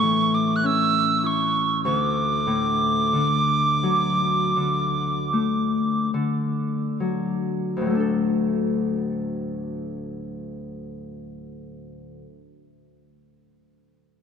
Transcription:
0.00 1.89 A2 medium
0.00 1.89 E3 soft
0.00 2.00 B3 soft
0.00 0.36 C#6 medium
0.34 0.57 D6 medium
0.56 0.68 F#6 medium
0.63 1.91 C#4 soft
0.63 1.28 E6 medium
1.23 3.84 E4 soft
1.23 1.84 C#6 medium
1.84 5.75 D2 soft
1.84 1.97 C#6 medium
1.97 6.11 D6 medium
2.47 3.18 A2 soft
3.13 4.55 D3 soft
3.83 4.60 F#3 soft
4.56 6.13 D3 soft
5.33 7.90 A3 soft
6.14 7.93 D3 soft
7.00 7.85 F#3 soft
7.77 12.21 D2 soft
7.81 12.25 A2 soft
7.86 12.30 F#3 soft
7.90 12.34 A3 soft
7.95 12.39 D4 soft
8.00 12.44 A4 soft

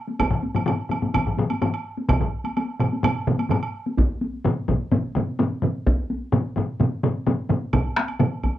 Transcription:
0.08 taiko high soft
0.19 taiko medium
0.19 taiko high medium
0.19 high woodblock medium
0.31 taiko low-mid loud
0.43 taiko high medium
0.55 taiko low-mid medium
0.55 taiko high medium
0.55 high woodblock soft
0.66 taiko low-mid loud
0.66 taiko high medium
0.66 high woodblock soft
0.89 taiko low-mid medium
0.89 taiko high medium
0.89 high woodblock soft
1.02 taiko low-mid medium
1.02 taiko high soft
1.14 taiko medium
1.14 taiko low-mid medium
1.14 taiko high medium
1.14 high woodblock medium
1.27 taiko low-mid medium
1.38 taiko low-mid loud
1.38 taiko high medium
1.50 taiko high medium
1.50 high woodblock soft
1.62 taiko low-mid loud
1.62 taiko high medium
1.62 high woodblock soft
1.74 high woodblock soft
1.97 taiko high soft
2.09 taiko loud
2.09 taiko low-mid medium
2.09 taiko mid loud
2.09 taiko high medium
2.09 high woodblock medium
2.21 taiko low-mid medium
2.21 taiko mid medium
2.44 taiko high medium
2.44 high woodblock soft
2.57 taiko high medium
2.57 high woodblock soft
2.80 taiko low-mid medium
2.80 taiko mid medium
2.80 taiko high soft
2.80 high woodblock soft
2.93 taiko high medium
3.03 taiko low-mid medium
3.03 taiko mid loud
3.03 taiko high medium
3.03 high woodblock medium
3.27 taiko low-mid medium
3.27 taiko mid loud
3.27 taiko high medium
3.39 taiko high medium
3.39 high woodblock soft
3.50 taiko low-mid loud
3.50 taiko mid medium
3.50 taiko high medium
3.50 high woodblock soft
3.63 high woodblock soft
3.86 taiko high soft
3.98 taiko loud
3.98 taiko high medium
4.10 taiko high soft
4.21 taiko high medium
4.33 taiko high soft
4.44 taiko low-mid medium
4.44 taiko mid loud
4.44 taiko high medium
4.57 taiko high soft
4.68 taiko medium
4.68 taiko low-mid medium
4.68 taiko mid medium
4.68 taiko high medium
4.91 taiko low-mid medium
4.91 taiko mid medium
4.91 taiko high medium
5.04 taiko high soft
5.15 taiko low-mid medium
5.15 taiko mid loud
5.15 taiko high medium
5.28 taiko high soft
5.39 taiko low-mid loud
5.39 taiko mid medium
5.39 taiko high medium
5.52 taiko high soft
5.62 taiko low-mid medium
5.62 taiko mid medium
5.62 taiko high medium
5.75 taiko high soft
5.87 taiko loud
5.87 taiko high medium
6.10 taiko high medium
6.22 taiko high soft
6.32 taiko low-mid loud
6.32 taiko mid loud
6.32 taiko high medium
6.45 taiko high soft
6.56 taiko low-mid medium
6.56 taiko mid medium
6.56 taiko high medium
6.80 taiko low-mid medium
6.80 taiko mid medium
6.80 taiko high medium
6.92 taiko high soft
7.03 taiko low-mid medium
7.03 taiko mid medium
7.03 taiko high medium
7.16 taiko high soft
7.27 taiko low-mid loud
7.27 taiko mid medium
7.27 taiko high medium
7.39 taiko high soft
7.49 taiko low-mid medium
7.49 taiko mid loud
7.49 taiko high medium
7.62 taiko high soft
7.73 taiko medium
7.73 taiko low-mid medium
7.73 taiko mid loud
7.73 taiko high medium
7.73 high woodblock medium
7.86 taiko high soft
7.96 taiko rim medium
7.96 taiko high medium
8.08 taiko high soft
8.08 high woodblock soft
8.19 taiko low-mid loud
8.19 taiko mid loud
8.19 taiko high medium
8.19 high woodblock soft
8.44 taiko medium
8.44 taiko high medium
8.44 high woodblock soft

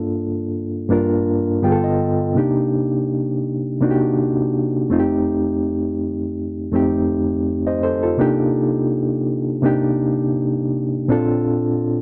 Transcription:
0.00 0.25 G2 medium
0.00 0.25 A#3 medium
0.00 0.26 D4 medium
0.00 0.26 F4 medium
0.00 0.27 A4 medium
0.89 1.61 G2 medium
0.89 1.63 A#3 medium
0.89 1.64 D4 medium
0.89 1.64 F4 medium
0.89 1.64 A#4 medium
1.62 2.22 G2 medium
1.62 2.23 D3 medium
1.62 2.23 B3 medium
1.62 2.24 F4 medium
1.62 1.72 G#4 medium
1.62 1.82 G5 medium
1.72 2.27 A4 medium
1.84 2.33 D#5 medium
2.34 3.27 C3 medium
2.34 3.27 A#3 medium
2.34 3.28 D4 medium
2.34 3.28 D#4 medium
2.34 3.29 G4 medium
3.81 4.73 C3 medium
3.81 4.73 A#3 medium
3.81 4.74 D4 medium
3.81 4.74 D#4 medium
3.81 3.90 F#4 medium
3.91 4.78 G4 medium
4.89 6.08 F2 medium
4.89 6.08 A3 medium
4.89 6.08 C4 medium
4.89 6.09 D#4 medium
4.89 4.99 F4 medium
4.99 6.13 G4 medium
6.72 7.64 F2 medium
6.72 7.65 A3 medium
6.72 7.65 C4 medium
6.72 7.66 D#4 medium
6.72 7.11 G4 medium
7.67 7.82 C5 soft
7.67 7.82 D#5 medium
7.83 8.02 A4 medium
7.83 8.02 C5 medium
8.03 8.37 F4 medium
8.03 8.37 A4 medium
8.17 9.10 C3 medium
8.17 9.10 A#3 medium
8.17 9.11 D4 medium
8.17 9.11 D#4 medium
8.17 9.11 G4 medium
9.62 10.55 C3 medium
9.62 10.55 A#3 medium
9.62 10.56 D4 medium
9.62 10.56 D#4 medium
9.62 10.56 G4 medium
11.08 12.00 A#2 medium
11.08 12.00 C4 medium
11.08 12.01 D4 medium
11.08 12.01 F4 medium
11.08 12.02 A4 medium

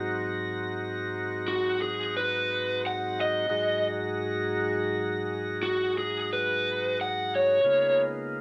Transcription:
0.00 3.46 G#2 medium
0.00 3.46 F#3 medium
0.00 3.47 C4 medium
0.00 3.47 D#4 medium
0.00 3.47 F#4 medium
0.00 3.46 A#5 medium
1.48 1.79 F#4 medium
1.82 2.13 G#4 medium
2.17 2.81 B4 medium
2.87 3.17 F#5 medium
3.21 3.85 D#5 medium
3.49 7.61 G#2 medium
3.49 7.61 F#3 medium
3.49 7.60 G#3 medium
3.49 7.60 D#4 medium
3.49 7.61 F#4 medium
3.49 7.61 A#5 medium
5.63 5.94 F#4 medium
5.98 6.29 G#4 medium
6.33 6.97 B4 medium
7.01 7.32 F#5 medium
7.35 8.00 C#5 medium
7.64 8.41 C#3 medium
7.64 8.41 G#3 medium
7.64 8.41 A#3 medium
7.64 8.41 B3 medium
7.64 8.41 D#4 medium
7.64 8.41 F4 medium

